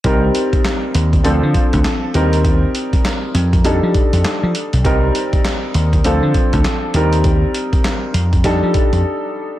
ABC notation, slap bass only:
X:1
M:4/4
L:1/16
Q:"Swing 16ths" 1/4=100
K:Cdor
V:1 name="Slap bass" clef=bass
C,,2 z4 E,,2 D,, D, z D,, z2 E,,2- | E,,2 z4 F,,2 F,, F, z F,, z F, z =B,,, | C,,2 z4 E,,2 D,, D, z D,, z2 E,,2- | E,,2 z4 F,,2 F,, F, z F,, z4 |]